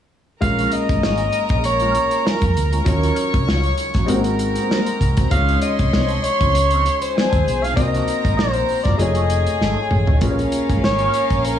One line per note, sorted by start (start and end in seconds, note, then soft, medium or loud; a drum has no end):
0.40 0.65 A#1 medium
0.40 2.82 G#3 medium
0.40 2.83 A#3 medium
0.40 2.83 C#4 soft
0.40 2.83 F4 soft
0.40 2.83 A#4 medium
0.40 2.84 A#4 medium
0.40 0.74 F5 loud
0.40 2.83 A#5 medium
0.40 kick loud
0.40 closed hi-hat medium
0.57 0.71 G#3 soft
0.57 0.72 C#4 medium
0.57 0.71 F4 medium
0.57 closed hi-hat soft
0.71 1.65 D#5 loud
0.71 muted clean electric guitar stroke soft
0.71 closed hi-hat medium
0.89 1.00 G#1 medium
0.89 kick medium
0.89 closed hi-hat soft
1.02 1.26 G#1 medium
1.02 1.18 G#3 medium
1.02 1.19 C#4 medium
1.02 1.19 F4 medium
1.02 snare loud
1.18 closed hi-hat soft
1.32 muted clean electric guitar stroke soft
1.32 closed hi-hat medium
1.49 1.96 A#1 medium
1.49 1.61 G#3 soft
1.49 1.61 C#4 soft
1.49 1.61 G#4 soft
1.49 kick medium
1.49 closed hi-hat soft
1.64 2.28 C#5 medium
1.64 muted clean electric guitar stroke soft
1.64 closed hi-hat medium
1.80 1.94 G#3 medium
1.80 1.95 C#4 medium
1.80 1.94 F4 medium
1.80 closed hi-hat soft
1.95 muted clean electric guitar stroke soft
1.95 closed hi-hat medium
2.11 muted clean electric guitar stroke soft
2.11 closed hi-hat medium
2.25 2.41 G#3 medium
2.25 2.41 C#4 medium
2.25 2.41 F4 medium
2.25 2.87 A#4 medium
2.25 snare medium
2.41 2.56 F2 medium
2.41 kick medium
2.41 closed hi-hat soft
2.55 2.79 D2 medium
2.55 muted clean electric guitar stroke soft
2.55 closed hi-hat medium
2.72 2.83 G#3 soft
2.72 2.83 C#4 soft
2.72 2.83 F4 medium
2.72 closed hi-hat soft
2.84 3.10 D#2 loud
2.84 4.06 F#3 medium
2.84 4.06 C#4 medium
2.84 4.06 D#4 medium
2.84 4.07 F4 soft
2.84 4.07 A#4 medium
2.84 4.07 C#5 medium
2.84 4.07 C#6 medium
2.84 muted clean electric guitar stroke soft
2.84 kick loud
2.84 closed hi-hat medium
2.89 3.45 A#4 medium
3.03 3.16 F#3 medium
3.03 3.17 C#4 medium
3.03 3.17 F4 medium
3.03 closed hi-hat soft
3.16 muted clean electric guitar stroke soft
3.16 closed hi-hat medium
3.33 3.47 C2 medium
3.33 muted clean electric guitar stroke soft
3.33 kick medium
3.33 closed hi-hat soft
3.47 3.71 C#2 medium
3.47 3.63 F#3 medium
3.47 3.63 C#4 medium
3.47 3.64 F4 medium
3.47 snare loud
3.63 closed hi-hat soft
3.77 muted clean electric guitar stroke soft
3.77 closed hi-hat medium
3.94 4.09 A#1 medium
3.94 4.06 F#3 soft
3.94 4.05 C#4 soft
3.94 4.05 F#4 medium
3.94 kick medium
3.94 snare soft
3.94 closed hi-hat soft
4.06 4.55 G#1 medium
4.06 5.28 G#3 medium
4.06 4.24 A#3 medium
4.06 5.28 C4 medium
4.06 4.25 C4 medium
4.06 5.29 D#4 medium
4.06 5.29 F#4 medium
4.06 4.25 F#4 medium
4.06 5.29 A#4 medium
4.06 5.30 A#4 medium
4.06 5.29 A#5 medium
4.06 closed hi-hat medium
4.24 closed hi-hat soft
4.39 muted clean electric guitar stroke soft
4.39 closed hi-hat medium
4.55 4.67 A#3 soft
4.55 4.67 C4 soft
4.55 4.67 F#4 soft
4.55 closed hi-hat medium
4.70 4.86 A#3 medium
4.70 4.86 C4 medium
4.70 4.86 F#4 medium
4.70 snare medium
4.86 closed hi-hat soft
5.01 5.25 C2 medium
5.01 muted clean electric guitar stroke soft
5.01 kick medium
5.01 closed hi-hat medium
5.17 5.29 A#3 soft
5.17 5.28 C4 soft
5.17 5.28 F#4 soft
5.17 kick medium
5.17 closed hi-hat medium
5.30 5.55 C#2 medium
5.30 7.72 G#3 medium
5.30 7.73 C#4 medium
5.30 7.73 D#4 medium
5.30 7.73 F4 medium
5.30 7.12 C#5 medium
5.30 7.74 D#5 medium
5.30 5.60 F5 loud
5.30 7.12 C6 medium
5.30 kick loud
5.30 closed hi-hat medium
5.48 5.61 F3 medium
5.48 5.62 C4 medium
5.48 5.62 D#4 medium
5.48 closed hi-hat soft
5.62 6.25 D#5 medium
5.62 muted clean electric guitar stroke soft
5.62 closed hi-hat medium
5.79 5.90 C2 medium
5.79 kick medium
5.79 closed hi-hat soft
5.93 6.17 C2 medium
5.93 6.14 F3 medium
5.93 6.14 C4 medium
5.93 6.14 D#4 medium
5.93 snare loud
6.08 closed hi-hat soft
6.24 7.01 C#5 medium
6.24 muted clean electric guitar stroke soft
6.24 closed hi-hat medium
6.41 6.87 C#2 medium
6.41 6.52 F3 soft
6.41 6.52 C4 soft
6.41 6.51 F4 medium
6.41 kick medium
6.41 closed hi-hat soft
6.55 muted clean electric guitar stroke soft
6.55 closed hi-hat medium
6.71 6.86 F3 soft
6.71 6.85 C4 medium
6.71 6.85 D#4 medium
6.71 closed hi-hat medium
6.86 muted clean electric guitar stroke soft
6.86 closed hi-hat medium
7.01 7.65 C5 medium
7.01 muted clean electric guitar stroke soft
7.01 closed hi-hat medium
7.16 7.37 F3 medium
7.16 7.37 C4 medium
7.16 7.37 D#4 medium
7.16 7.76 G#4 medium
7.16 7.76 G#5 medium
7.16 snare medium
7.33 7.43 D#2 medium
7.33 kick medium
7.33 closed hi-hat soft
7.47 7.71 B1 medium
7.47 muted clean electric guitar stroke soft
7.47 closed hi-hat medium
7.63 7.74 F3 soft
7.63 7.74 C4 soft
7.63 7.74 D#4 medium
7.63 7.76 F5 medium
7.63 closed hi-hat soft
7.76 8.00 C2 medium
7.76 8.97 A#3 medium
7.76 8.97 C4 medium
7.76 8.97 D#4 medium
7.76 8.98 F#4 soft
7.76 8.97 A#4 medium
7.76 8.98 C5 medium
7.76 8.34 D#5 loud
7.76 8.97 A#5 medium
7.76 kick loud
7.76 closed hi-hat medium
7.94 8.07 F#3 medium
7.94 8.07 A#3 medium
7.94 8.08 D#4 medium
7.94 closed hi-hat soft
8.08 muted clean electric guitar stroke soft
8.08 closed hi-hat medium
8.25 8.36 G#1 medium
8.25 muted clean electric guitar stroke soft
8.25 kick medium
8.25 closed hi-hat soft
8.37 8.62 A#1 medium
8.37 8.54 F#3 medium
8.37 8.54 A#3 medium
8.37 8.54 D#4 medium
8.37 8.82 C5 medium
8.37 snare loud
8.53 closed hi-hat soft
8.69 muted clean electric guitar stroke soft
8.69 open hi-hat soft
8.83 8.97 F#1 medium
8.83 8.96 F#3 soft
8.83 8.96 A#3 soft
8.83 8.96 F4 medium
8.83 8.97 D5 medium
8.83 kick medium
8.83 snare soft
8.83 closed hi-hat soft
8.97 9.45 F1 medium
8.97 10.19 A3 medium
8.97 10.19 D#4 medium
8.97 10.20 F4 medium
8.97 10.20 G#4 soft
8.97 10.20 G#4 medium
8.97 10.20 C#5 medium
8.97 9.86 D#5 medium
8.97 10.20 G#5 medium
8.97 closed hi-hat medium
9.15 9.28 F3 medium
9.15 9.29 A3 medium
9.15 9.29 D#4 medium
9.15 closed hi-hat soft
9.30 closed hi-hat medium
9.46 muted clean electric guitar stroke soft
9.46 closed hi-hat soft
9.60 9.73 G#1 medium
9.60 9.76 F3 medium
9.60 9.76 A3 medium
9.60 9.77 D#4 medium
9.60 snare medium
9.91 10.04 A1 medium
9.91 muted clean electric guitar stroke soft
9.91 mid tom medium
10.07 10.19 A1 medium
10.07 10.18 F3 soft
10.07 10.18 A3 soft
10.07 10.18 D#4 soft
10.07 floor tom medium
10.21 10.45 A#1 medium
10.21 10.37 G#3 medium
10.21 11.59 A#3 medium
10.21 10.37 C#4 medium
10.21 11.59 C#4 medium
10.21 10.38 F4 medium
10.21 11.59 F4 medium
10.21 11.59 G#4 medium
10.21 11.59 A#4 medium
10.21 10.30 B4 medium
10.21 11.59 F5 medium
10.21 kick loud
10.21 closed hi-hat medium
10.30 11.59 C#5 medium
10.39 closed hi-hat soft
10.52 muted clean electric guitar stroke soft
10.52 closed hi-hat medium
10.68 10.80 G#1 medium
10.68 10.80 G#3 soft
10.68 10.80 C#4 soft
10.68 10.79 G#4 medium
10.68 kick medium
10.68 closed hi-hat soft
10.83 11.07 G#1 medium
10.83 11.47 C#5 loud
10.83 muted clean electric guitar stroke soft
10.83 snare loud
10.99 11.13 G#3 soft
10.99 11.13 C#4 medium
10.99 11.13 F4 medium
10.99 closed hi-hat soft
11.14 muted clean electric guitar stroke soft
11.14 closed hi-hat medium
11.30 11.59 A#1 medium
11.30 muted clean electric guitar stroke soft
11.30 kick medium
11.30 closed hi-hat soft
11.45 11.59 A#4 medium
11.45 closed hi-hat medium